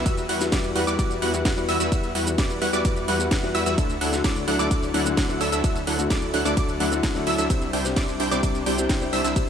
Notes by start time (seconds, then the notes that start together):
0.05 E2 G3 B3 E4 F#4 B4 E5 E6, kick, closed hi-hat, ride, shaker
0.17 closed hi-hat, shaker
0.29 E2 G3 E4 F#4 B4 F#5 F#6, open hi-hat
0.40 G3 B3 E4 F#4, snare, closed hi-hat, shaker
0.52 E2 G3 E4 F#4 B4 D5 D6, kick, snare, closed hi-hat, ride, shaker
0.64 closed hi-hat, shaker
0.76 E2 G3 E4 F#4 B4 F#5 F#6, open hi-hat
0.87 E2 G3 B3 E4 F#4 B4 D5 D6, shaker
0.99 E2 G3 E4 F#4 B4 D5 D6, kick, closed hi-hat, ride, shaker
1.11 shaker
1.22 E2 G3 B3 E4 F#4 B4 F#5 F#6, open hi-hat
1.33 G3 B3 E4 F#4, closed hi-hat, shaker
1.45 E2 G3 E4 F#4 B4 F#5 F#6, kick, snare, closed hi-hat, ride, shaker
1.56 G3 B3 E4 F#4, shaker
1.69 E2 G3 E4 F#4 B4 E5 E6, open hi-hat
1.80 E2 G3 E4 F#4 B4 E5 E6, closed hi-hat, shaker
1.91 E2 G3 B3 E4 F#4 B4 E6, kick, closed hi-hat, ride, shaker
2.04 closed hi-hat, shaker
2.15 E2 G3 E4 F#4 B4 F#5 F#6, open hi-hat
2.26 G3 B3 E4 F#4, closed hi-hat, shaker
2.38 E2 G3 E4 F#4 B4 D5 D6, kick, snare, closed hi-hat, ride, shaker
2.50 closed hi-hat, shaker
2.62 E2 G3 E4 F#4 B4 F#5 F#6, open hi-hat
2.73 E2 G3 B3 E4 F#4 B4 D5 D6, closed hi-hat, shaker
2.85 E2 G3 E4 F#4 B4 D6, kick, closed hi-hat, ride, shaker
2.96 closed hi-hat, shaker
3.08 E2 G3 B3 E4 F#4 B4 F#5 F#6, open hi-hat
3.19 G3 B3 E4 F#4, closed hi-hat, shaker
3.31 E2 G3 E4 F#4 B4 F#5 F#6, kick, snare, closed hi-hat, ride, shaker
3.42 G3 B3 E4 F#4, snare, shaker
3.55 E2 G3 E4 F#4 B4 E5 E6, open hi-hat
3.66 E2 G3 E4 F#4 B4 E5 E6, closed hi-hat, shaker
3.77 D2 D3 F#3 A3 D4 E4 F#4 A4 E5 E6, kick, closed hi-hat, ride, shaker
3.90 closed hi-hat, shaker
4.01 D2 F#3 D4 E4 A4 F#5 F#6, open hi-hat
4.12 D3 A3 D4 E4 F#4, snare, closed hi-hat, shaker
4.24 D2 F#3 D4 E4 A4 D5 D6, kick, snare, closed hi-hat, ride, shaker
4.36 closed hi-hat, shaker
4.48 D2 F#3 D4 E4 A4 F#5 F#6, open hi-hat
4.59 D2 D3 F#3 A3 D4 E4 F#4 A4 D5 D6, closed hi-hat, shaker
4.71 D2 D6, kick, closed hi-hat, ride, shaker
4.83 shaker
4.94 D2 D3 F#3 A3 D4 E4 F#4 A4 F#5 F#6, open hi-hat
5.05 D3 A3 D4 E4 F#4, closed hi-hat, shaker
5.17 D2 F#3 D4 E4 A4 F#5 F#6, kick, snare, closed hi-hat, ride, shaker
5.28 D3 A3 D4 E4 F#4, shaker
5.41 D2 F#3 D4 E4 A4 E5 E6, open hi-hat
5.52 D2 F#3 D4 E4 A4 E5 E6, closed hi-hat, shaker
5.63 D2 D3 F#3 A3 D4 E4 F#4 A4 E5 E6, kick, closed hi-hat, ride, shaker
5.76 closed hi-hat, shaker
5.87 D2 F#3 D4 E4 A4 F#5 F#6, open hi-hat
5.98 D3 A3 D4 E4 F#4, closed hi-hat, shaker
6.10 D2 F#3 D4 E4 A4 D5 D6, kick, snare, closed hi-hat, ride, shaker
6.22 closed hi-hat, shaker
6.34 D2 F#3 D4 E4 A4 F#5 F#6, open hi-hat
6.45 D2 D3 F#3 A3 D4 E4 F#4 A4 D5 D6, closed hi-hat, shaker
6.57 D2 F#3 E4 A4 D5 D6, kick, closed hi-hat, ride, shaker
6.69 closed hi-hat, shaker
6.80 D2 D3 F#3 A3 D4 E4 F#4 A4 F#5 F#6, open hi-hat
6.91 D3 A3 D4 E4 F#4, closed hi-hat, shaker
7.03 D2 F#3 D4 E4 A4 F#5 F#6, kick, snare, closed hi-hat, ride, shaker
7.15 D3 A3 D4 E4 F#4, snare, shaker
7.27 D2 F#3 D4 E4 A4 E5 E6, open hi-hat
7.38 D2 F#3 D4 E4 A4 E5 E6, closed hi-hat, shaker
7.49 C2 C3 G3 C4 D4 E4 G4 C5 E5 E6, kick, closed hi-hat, ride, shaker
7.62 closed hi-hat, shaker
7.73 C2 G3 D4 E4 C5 G5 G6, open hi-hat
7.84 C3 C4 D4 E4 G4, snare, closed hi-hat, shaker
7.96 C2 G3 D4 E4 C5 D5 D6, kick, snare, closed hi-hat, ride, shaker
8.08 closed hi-hat, shaker
8.20 C2 G3 D4 E4 C5 G5 G6, open hi-hat
8.31 C2 C3 G3 C4 D4 E4 G4 C5 D5 D6, closed hi-hat, shaker
8.43 C2 G3 D4 E4 C5 D5 D6, kick, closed hi-hat, ride, shaker
8.55 shaker
8.66 C2 C3 G3 C4 D4 E4 G4 C5 G5 G6, open hi-hat
8.77 C3 C4 D4 E4 G4, closed hi-hat, shaker
8.89 C2 G3 D4 E4 C5 G5 G6, kick, snare, closed hi-hat, ride, shaker
9.01 C3 C4 D4 E4 G4, shaker
9.13 C2 G3 D4 E4 C5 E5 E6, open hi-hat
9.24 C2 G3 D4 E4 C5 E5 E6, closed hi-hat, shaker
9.36 C2 C3 G3 C4 D4 E4 G4 C5 E5 E6, kick, closed hi-hat, ride, shaker